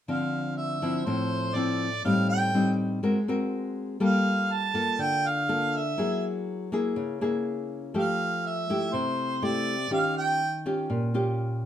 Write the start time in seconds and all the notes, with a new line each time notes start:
0.08 D3 F3 C4 F5
0.57 E5
0.82 F3 C4 E4
1.05 A2 F3 C4 E4 C5
1.55 F3 C4 E4 D5
2.05 A2 G3 C4 D#4 F5
2.29 G5
2.54 G3 C4 D#4
3.03 G#3 C4 F#4 A#4
3.28 C4 F#4 A#4
4.00 G3 A#3 F4 A4 F5
4.52 A5
4.74 A#3 F4 A4
4.99 D3 G5
5.27 F5
5.49 A#3 F4 A4
5.76 E5
5.98 F#3 A#3 E4 G#4
6.72 A#3 E4 G#4
6.96 C#3
7.21 A#3 E4 G#4
7.94 F3 A3 G4 F5
8.46 E5
8.70 A3 E4 G4
8.93 C3 C5
9.42 A3 E4 G4 D5
9.91 D#3 C#4 F4 G4 F5
10.17 G5
10.66 C#4 F4 G4
10.90 A#2
11.14 C#4 F4 G4